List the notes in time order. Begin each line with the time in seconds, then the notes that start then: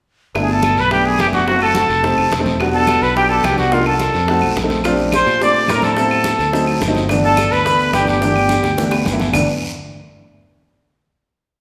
0.35 G1 A3 B3 D4 E4, high bongo, high conga, long guiro, claves
0.41 A3 B3 D4 E4 G#4 G#5
0.49 A4 A5, high bongo, high conga
0.63 high bongo, high conga, short guiro, claves
0.77 B1 B4 B5, high bongo, high conga, short guiro
0.91 A3 B3 D4 E4 G4 G5, high bongo, high conga, long guiro
1.05 G#4 G#5, high conga
1.19 F#1 G4 G5, high bongo, low bongo, high conga, short guiro, claves
1.27 A3 B3 D4 E4
1.33 F#4 F#5, high bongo, high conga, short guiro
1.47 A3 C4 E4 F#4 F#5, high bongo, high conga, long guiro
1.55 A3 C4 E4 F#4
1.61 A4 A5, high bongo, high conga, claves
1.75 high bongo, high conga, short guiro
1.90 F1, high bongo, short guiro
2.03 A3 C4 D#4 G4, high bongo, high conga, long guiro
2.17 F1, high bongo, high conga, claves
2.31 E1, high bongo, low bongo, high conga, short guiro
2.39 A3 C4 D#4 A4
2.46 high conga, short guiro
2.60 G3 B3 D4 F#4, high bongo, high conga, long guiro, claves
2.67 G3 B3 D4 F#4
2.74 A4 A5, high bongo, high conga
2.87 high bongo, high conga, short guiro, claves
3.01 B1 B4 B5, high bongo, high conga, short guiro
3.16 G3 B3 D4 F#4 G4 G5, high bongo, high conga, long guiro
3.29 A4 A5, high conga
3.44 C2 G4 G5, high bongo, low bongo, high conga, short guiro, claves
3.51 G3 B3 D4 F#4
3.58 F#4 F#5, high bongo, high conga, short guiro
3.72 A#3 D4 D#4 F4 F5, high bongo, high conga, long guiro
3.79 A#3 D4 D#4 F4
3.85 A4 A5, high bongo, high conga, claves
4.00 high bongo, high conga, short guiro
4.14 F2, high bongo, short guiro
4.28 A3 C4 D#4 F#4, high bongo, high conga, long guiro
4.42 B1, high bongo, high conga, claves
4.56 A#1, high bongo, low bongo, high conga, short guiro
4.63 A3 C4 D#4 A4
4.70 high conga, short guiro
4.84 A3 C4 D4 F4, high bongo, high conga, long guiro, claves, maracas
4.92 A3 C4 D4 G4
4.98 high bongo, high conga, maracas
5.12 C5 C6, high bongo, high conga, short guiro, claves, maracas
5.26 A#2, high bongo, high conga, short guiro, maracas
5.40 A3 C4 D4 G4 D5 D6, high bongo, high conga, long guiro, maracas
5.54 high conga, maracas
5.68 A2 A#4 A#5, high bongo, low bongo, high conga, short guiro, claves, maracas
5.75 A3 C4 D4 E4
5.82 A4 A5, high bongo, high conga, short guiro, maracas
5.96 G3 B3 C4 E4, high bongo, high conga, long guiro, maracas
6.03 G3 B3 C4 E4
6.11 high bongo, high conga, claves, maracas
6.24 high bongo, high conga, short guiro, maracas
6.39 D2, high bongo, short guiro, maracas
6.52 F#3 A3 C4 D#4, high bongo, high conga, long guiro, maracas
6.67 high bongo, high conga, claves, maracas
6.81 G1, high bongo, low bongo, high conga, short guiro, maracas
6.87 F#3 A3 C4 D#4
6.95 high conga, short guiro, maracas
7.09 E3 A3 B3 D4, high bongo, high conga, long guiro, claves, maracas
7.16 E3 A3 B3 D4
7.24 A4 A5, high bongo, high conga, maracas
7.37 high bongo, high conga, short guiro, claves, maracas
7.51 D2 B4 B5, high bongo, high conga, short guiro, maracas
7.65 E3 A3 B3 D4, high bongo, high conga, long guiro, maracas
7.80 high conga, maracas
7.93 G1 G4 G5, high bongo, low bongo, high conga, short guiro, claves, maracas
7.99 E3 A3 B3 D4
8.07 G4 G5, high bongo, high conga, short guiro, maracas
8.21 E3 A3 B3 D4, high bongo, high conga, long guiro, maracas
8.27 E3 A3 B3 D4
8.36 high bongo, high conga, claves, maracas
8.49 high bongo, high conga, short guiro, maracas
8.63 D2, high bongo, short guiro, maracas
8.77 E3 A3 B3 D4, low bongo, long guiro, maracas
8.91 B5, high bongo, high conga, claves, maracas
9.05 G1 G5, low bongo, high conga, short guiro, maracas
9.12 E3 A3 B3 E4
9.19 E5, low bongo, high conga, short guiro, maracas
9.33 G1 E3 A3 B3 D4, low bongo, low conga, long guiro, claves, maracas